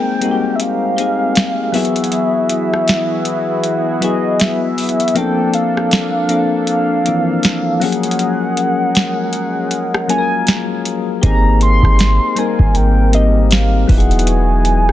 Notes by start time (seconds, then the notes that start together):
Already playing: G#3 A#3 C4 D#4 G#4 A#4 G5
0.20 G3 A#3 C4 D#4, closed hi-hat
0.25 F#4
0.31 G4
0.55 E5
0.60 F5, closed hi-hat
0.97 A#3 C4 D#4 G4, closed hi-hat
1.01 G#4
1.35 snare, closed hi-hat
1.72 E3 F#3 B3 E4 F#4 G#4 E5, closed hi-hat, open hi-hat
1.77 G#4
1.85 closed hi-hat
1.96 closed hi-hat
2.04 closed hi-hat
2.12 closed hi-hat
2.49 closed hi-hat
2.74 cross-stick
2.88 snare, closed hi-hat
3.25 closed hi-hat
3.64 closed hi-hat
4.00 F#3 B3 E4 F#4 D#5, closed hi-hat
4.04 G#4
4.40 E5, snare, closed hi-hat
4.78 closed hi-hat, open hi-hat
4.89 closed hi-hat
5.00 closed hi-hat
5.08 closed hi-hat
5.14 F3 A#3 C4 D4 A4 G5, closed hi-hat
5.18 A4
5.54 F5, closed hi-hat
5.77 cross-stick
5.91 snare, closed hi-hat
6.28 F3 A#3 C4 D4, closed hi-hat
6.32 A4
6.67 F5, closed hi-hat
7.04 F3 A#3 C4 D4, closed hi-hat
7.08 E3
7.43 snare, closed hi-hat
7.80 F3 F#3 G#3 A#3 C#4 G#4 A#4 F#5, closed hi-hat, open hi-hat
7.84 G#4
7.92 closed hi-hat
8.03 closed hi-hat
8.11 closed hi-hat
8.19 closed hi-hat
8.57 closed hi-hat
8.95 snare, closed hi-hat
9.33 closed hi-hat
9.71 closed hi-hat
9.94 cross-stick
10.08 F#3 A#3 C#4 F4 G#5, closed hi-hat
10.12 G#4
10.18 A#4
10.47 snare, closed hi-hat
10.85 closed hi-hat
11.21 G#1 A#3 C4 D#4 G4 A#4 A#5, kick, closed hi-hat
11.26 G#4
11.61 C6, closed hi-hat
11.83 G#1, kick, cross-stick
11.99 snare, closed hi-hat
12.35 G3 A#3 C4 D#4 G#5, closed hi-hat
12.40 A#4
12.59 G#1, kick
12.75 G5, closed hi-hat
13.12 G3 A#3 C4 D#4 D#5, closed hi-hat
13.16 G4
13.51 F5, snare, closed hi-hat
13.87 E1 E3 F#3 B3 D#4 E4 F#4 G#4 F#5, kick, closed hi-hat, open hi-hat
13.92 G4
13.98 G#4, closed hi-hat
14.11 closed hi-hat
14.19 closed hi-hat
14.27 G#5, closed hi-hat
14.65 closed hi-hat
14.89 cross-stick